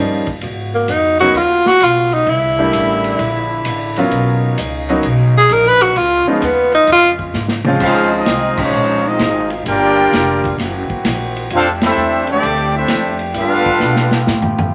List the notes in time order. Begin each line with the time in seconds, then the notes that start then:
Already playing: G2 F3 G3 A#3 C#4 D#4
0.27 muted upright bass stroke, kick, ride
0.41 G#2 C#3 B3 F#4, ride
0.74 A#3
0.88 F2 D#4, hi-hat pedal, ride
1.19 F#3 A#3 B3 C#4 D#4 F#4, ride
1.34 D#2 F4, ride
1.66 F#4, snare
1.80 B1 F4, hi-hat pedal, ride
2.12 D#4, ride
2.26 C2 D3 E4, ride
2.59 G3 A3 A#3 D4 E4
2.73 A1, hi-hat pedal, ride
3.04 ride
3.19 A#1, ride
3.65 A1, hi-hat pedal, ride
3.96 F#3 A#3 B3 C#4 F4, ride
4.11 B1 C#3 C#4 D#4, ride
4.58 C#2, hi-hat pedal, ride
4.89 F#3 A#3 B3 C#4 D#4, ride
5.03 B1, ride
5.37 G#4
5.49 A#1 A#4, hi-hat pedal, ride
5.68 B4
5.81 F#4, ride
5.96 C#2 C#3 G#3 F4, ride
6.27 F3 G#3 B3 C#4 D#4, muted upright bass stroke
6.42 D#2 B3, hi-hat pedal, ride
6.72 D#4, ride
6.87 F2, ride
6.92 F4
7.19 kick
7.34 G#2, snare, hi-hat pedal
7.48 snare
7.65 F3 G#3 C4 C#4 F4, mid tom
7.80 C#2 F3 G#3 C4 D#4 F4 G#4 C5 F5, kick, crash
7.85 D#3 G#3
8.13 G#3 C4 D#4 F4 G#4 D#5
8.26 C2, snare, hi-hat pedal, ride
8.57 G#3 C#4 F4, kick, crash
8.62 F3 G#3 D#4 C#5
8.74 A#1
9.05 G#3 C4 D#4 F4 G#4 D#5
9.19 G#1, snare, hi-hat pedal, ride
9.50 ride
9.66 G1 D3 G3 A#3 D4 F4 G4 A#4 D5 G5, ride
10.12 F1, snare, hi-hat pedal, ride
10.44 kick, ride
10.58 F#1 E3 C4 F#4, snare, ride
10.89 muted upright bass stroke, kick
11.05 A#1, snare, hi-hat pedal, ride
11.36 ride
11.50 F2 G3 A3 C4 D4 F4 G4, ride
11.55 D4 A4 C5 F5
11.81 A3 C4 E4, snare, ride
11.86 D4 A4 C5 E5
11.97 E2, hi-hat pedal
12.27 D3 A3 C4 D4 G4 A4 D5, ride
12.43 D2, ride
12.76 A3 C4 D4 E4 A4 C5 E5
12.88 F2, snare, hi-hat pedal, ride
13.19 ride
13.34 G2 A3 B3 D4 F4, ride
13.38 A4 B4 F5
13.66 kick
13.80 B2, snare, hi-hat pedal
13.96 snare
14.11 snare
14.27 A2, snare
14.42 floor tom
14.59 floor tom